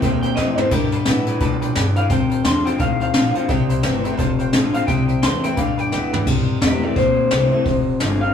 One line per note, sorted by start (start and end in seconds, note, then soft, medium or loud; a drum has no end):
0.02 0.36 E2 medium
0.02 0.70 G2 medium
0.02 0.35 C3 medium
0.02 0.35 A#3 medium
0.02 0.16 C5 loud
0.02 0.16 E5 loud
0.02 0.16 G5 loud
0.02 kick loud
0.02 closed hi-hat medium
0.23 0.32 C5 medium
0.23 0.33 E5 medium
0.23 0.36 G5 medium
0.23 0.33 G5 medium
0.23 closed hi-hat medium
0.36 0.57 F2 loud
0.36 0.56 C3 medium
0.36 0.58 E3 loud
0.36 0.56 A3 loud
0.36 0.58 A3 medium
0.36 0.58 C4 loud
0.36 0.57 E4 loud
0.36 0.50 C5 medium
0.36 0.58 D#5 loud
0.36 0.51 E5 medium
0.36 0.51 G5 medium
0.36 snare medium
0.57 0.70 C3 medium
0.57 0.71 A3 medium
0.57 0.72 C4 soft
0.57 0.72 E4 medium
0.57 0.66 C5 medium
0.57 0.71 C5 loud
0.57 0.67 E5 medium
0.57 0.67 A5 medium
0.57 muted upright bass stroke soft
0.57 floor tom medium
0.71 1.04 G2 medium
0.71 1.05 G2 medium
0.71 1.04 D3 medium
0.71 1.05 G3 medium
0.71 0.93 A#4 loud
0.71 0.84 B4 loud
0.71 0.84 D5 medium
0.71 0.85 G5 loud
0.71 kick loud
0.71 closed hi-hat medium
0.71 crash medium
0.92 1.01 B4 medium
0.92 1.60 B4 loud
0.92 1.01 D5 medium
0.92 1.02 A5 medium
0.92 closed hi-hat medium
1.05 1.25 G2 medium
1.05 1.40 A2 loud
1.05 1.26 E3 medium
1.05 1.27 G3 medium
1.05 1.27 B3 medium
1.05 1.27 E4 loud
1.05 1.19 B4 medium
1.05 1.19 D5 medium
1.05 1.20 G5 medium
1.05 snare loud
1.05 closed hi-hat medium
1.26 1.39 G2 medium
1.26 1.40 E3 medium
1.26 1.42 B3 soft
1.26 1.41 E4 medium
1.26 1.36 B4 medium
1.26 1.36 D5 medium
1.26 1.36 G5 medium
1.26 closed hi-hat medium
1.40 1.73 G2 medium
1.40 1.75 A2 medium
1.40 1.75 B2 medium
1.40 1.73 F3 medium
1.40 1.54 B4 loud
1.40 1.54 D5 loud
1.40 1.55 A5 loud
1.40 kick loud
1.40 closed hi-hat medium
1.61 1.70 B4 medium
1.61 1.71 D5 medium
1.61 1.71 G5 loud
1.61 closed hi-hat medium
1.75 1.95 G2 medium
1.75 2.09 G2 loud
1.75 2.10 G2 loud
1.75 1.95 E3 medium
1.75 1.88 B4 medium
1.75 1.89 D5 medium
1.75 1.89 G5 medium
1.75 snare loud
1.75 closed hi-hat medium
1.96 2.09 G2 medium
1.96 2.10 E3 loud
1.96 2.05 B4 medium
1.96 2.05 D5 medium
1.96 2.10 F5 loud
1.96 2.06 G5 medium
1.96 closed hi-hat medium
2.10 2.42 F2 medium
2.10 2.77 F2 medium
2.10 2.44 F2 medium
2.10 2.43 C3 loud
2.10 2.23 C5 loud
2.10 2.24 F5 loud
2.10 2.45 G5 loud
2.10 2.24 A5 loud
2.10 kick loud
2.10 closed hi-hat medium
2.30 2.39 C5 medium
2.30 2.40 F5 medium
2.30 2.40 A5 medium
2.30 closed hi-hat medium
2.44 2.79 E2 loud
2.44 2.64 F2 medium
2.44 2.65 D3 medium
2.44 2.64 D3 medium
2.44 2.66 A3 medium
2.44 2.66 C4 loud
2.44 2.65 F4 medium
2.44 2.57 C5 medium
2.44 2.58 F5 medium
2.44 2.58 A5 medium
2.44 2.66 C6 medium
2.44 snare loud
2.44 closed hi-hat medium
2.65 2.78 F2 medium
2.65 2.79 D3 medium
2.65 2.81 C4 soft
2.65 2.80 F4 medium
2.65 2.74 C5 medium
2.65 2.74 F5 medium
2.65 2.79 G5 loud
2.65 2.75 A5 medium
2.65 closed hi-hat medium
2.78 3.14 D2 medium
2.78 3.12 F2 medium
2.78 3.47 A2 loud
2.78 3.12 D#3 loud
2.78 2.92 C5 medium
2.78 2.92 F5 medium
2.78 3.00 F5 loud
2.78 2.93 A5 loud
2.78 kick loud
2.78 closed hi-hat medium
3.00 3.09 C5 medium
3.00 3.09 F5 medium
3.00 3.48 F5 loud
3.00 3.10 A5 medium
3.00 closed hi-hat medium
3.13 3.34 A#1 loud
3.13 3.34 F2 medium
3.13 3.35 D3 medium
3.13 3.34 D3 loud
3.13 3.35 A3 loud
3.13 3.36 C4 loud
3.13 3.35 F4 loud
3.13 3.27 C5 medium
3.13 3.27 F5 medium
3.13 3.28 A5 medium
3.13 snare loud
3.13 closed hi-hat medium
3.34 3.48 F2 medium
3.34 3.49 D3 loud
3.34 3.50 C4 soft
3.34 3.49 F4 medium
3.34 3.43 C5 medium
3.34 3.44 F5 medium
3.34 3.44 A5 medium
3.34 muted upright bass stroke soft
3.34 closed hi-hat medium
3.48 3.83 C2 loud
3.48 3.82 C3 medium
3.48 4.17 C3 loud
3.48 3.82 G3 medium
3.48 3.62 C5 loud
3.48 3.62 E5 loud
3.48 3.63 G5 loud
3.48 kick loud
3.48 closed hi-hat medium
3.69 3.78 C5 medium
3.69 3.79 E5 medium
3.69 3.79 G5 medium
3.69 closed hi-hat medium
3.83 4.18 G1 medium
3.83 4.03 C3 medium
3.83 4.05 E3 medium
3.83 4.04 A3 medium
3.83 4.05 A3 medium
3.83 4.05 C4 medium
3.83 4.05 E4 loud
3.83 3.96 C5 medium
3.83 3.97 E5 medium
3.83 3.97 G5 loud
3.83 snare loud
3.83 closed hi-hat medium
4.04 4.17 C3 medium
4.04 4.18 A3 medium
4.04 4.20 C4 soft
4.04 4.19 E4 medium
4.04 4.13 C5 medium
4.04 4.13 E5 medium
4.04 4.14 G5 loud
4.04 closed hi-hat medium
4.17 4.53 F1 medium
4.17 4.51 F2 medium
4.17 4.86 F2 medium
4.17 4.51 C3 loud
4.17 4.31 C5 loud
4.17 4.31 F5 loud
4.17 4.32 A5 loud
4.17 kick loud
4.17 closed hi-hat medium
4.39 4.48 C5 medium
4.39 4.48 F5 medium
4.39 4.49 G5 loud
4.39 closed hi-hat medium
4.53 4.87 A1 medium
4.53 4.73 F2 medium
4.53 4.74 D3 medium
4.53 4.73 D3 medium
4.53 4.74 A3 medium
4.53 4.75 C4 loud
4.53 4.75 F4 loud
4.53 4.66 C5 medium
4.53 4.67 F5 medium
4.53 4.67 A5 medium
4.53 snare loud
4.53 closed hi-hat medium
4.73 4.87 F2 medium
4.73 4.87 D3 medium
4.73 4.88 F4 medium
4.73 4.82 C5 medium
4.73 4.83 F5 medium
4.73 4.87 F5 loud
4.73 4.83 A5 medium
4.73 closed hi-hat medium
4.78 4.89 C4 soft
4.87 5.22 C2 medium
4.87 5.21 C3 medium
4.87 5.56 C3 medium
4.87 5.21 G3 medium
4.87 5.01 C5 loud
4.87 5.01 E5 loud
4.87 5.21 G5 loud
4.87 5.01 G5 loud
4.87 kick loud
4.87 closed hi-hat medium
5.08 5.17 C5 medium
5.08 5.18 E5 medium
5.08 5.18 G5 medium
5.08 closed hi-hat medium
5.22 5.57 E2 loud
5.22 5.42 C3 medium
5.22 5.44 E3 medium
5.22 5.43 A3 medium
5.22 5.44 A3 medium
5.22 5.44 C4 loud
5.22 5.43 E4 medium
5.22 5.35 C5 medium
5.22 5.36 E5 medium
5.22 5.36 G5 medium
5.22 5.44 C6 loud
5.22 snare loud
5.22 closed hi-hat medium
5.44 5.57 C3 medium
5.44 5.57 A3 medium
5.44 5.59 C4 soft
5.44 5.57 E4 medium
5.44 5.52 C5 medium
5.44 5.53 E5 medium
5.44 5.58 G5 medium
5.44 5.53 G5 medium
5.44 closed hi-hat medium
5.56 5.92 G2 medium
5.56 5.90 G2 medium
5.56 5.90 D3 loud
5.56 5.91 G3 loud
5.56 5.70 B4 medium
5.56 5.70 D5 medium
5.56 5.79 F5 loud
5.56 5.71 G5 loud
5.56 kick loud
5.56 closed hi-hat medium
5.78 5.86 B4 medium
5.78 5.87 D5 medium
5.78 6.26 G5 loud
5.78 5.88 G5 loud
5.78 closed hi-hat medium
5.91 6.26 D2 loud
5.91 6.11 G2 medium
5.91 6.12 E3 medium
5.91 6.13 G3 medium
5.91 6.13 B3 medium
5.91 6.12 E4 loud
5.91 6.05 B4 medium
5.91 6.05 D5 medium
5.91 6.05 G5 medium
5.91 snare medium
6.13 6.26 G2 medium
6.13 6.26 E3 medium
6.13 6.28 B3 soft
6.13 6.27 E4 medium
6.13 6.21 B4 medium
6.13 6.22 D5 medium
6.13 6.22 G5 loud
6.13 floor tom medium
6.27 6.47 C2 medium
6.27 6.94 C3 medium
6.27 6.59 C3 medium
6.27 6.60 G3 medium
6.27 kick loud
6.27 crash loud
6.61 6.96 E2 loud
6.61 6.81 C3 medium
6.61 6.82 E3 medium
6.61 6.82 A3 medium
6.61 6.81 A3 medium
6.61 6.82 C4 medium
6.61 6.80 E4 medium
6.61 6.83 G4 medium
6.61 6.84 E5 medium
6.61 snare loud
6.61 open hi-hat medium
6.82 6.95 C3 medium
6.82 6.96 A3 medium
6.82 6.96 C4 soft
6.82 6.95 E4 medium
6.82 6.97 A4 medium
6.82 6.96 D5 medium
6.96 7.30 D2 medium
6.96 7.63 G2 medium
6.96 7.29 C3 medium
6.96 7.29 A#3 loud
6.96 7.97 C5 loud
6.96 kick loud
6.96 open hi-hat medium
7.31 7.51 C2 loud
7.31 7.50 C3 medium
7.31 7.51 E3 medium
7.31 7.51 A3 medium
7.31 7.51 A3 loud
7.31 7.52 C4 loud
7.31 7.50 E4 loud
7.31 snare loud
7.31 open hi-hat soft
7.52 7.65 C3 medium
7.52 7.65 A3 medium
7.52 7.66 C4 soft
7.52 7.65 E4 medium
7.65 8.00 F1 medium
7.65 8.33 F2 medium
7.65 7.98 F2 medium
7.65 7.98 C3 medium
7.65 kick loud
7.65 open hi-hat medium
8.00 8.34 G1 loud
8.00 8.20 F2 medium
8.00 8.21 D3 medium
8.00 8.20 D3 medium
8.00 8.21 A3 medium
8.00 8.22 C4 medium
8.00 8.22 F4 medium
8.00 snare loud
8.00 open hi-hat soft
8.21 8.34 F2 medium
8.21 8.34 D3 medium
8.21 8.34 C4 soft
8.21 8.34 F4 medium
8.21 8.34 F5 medium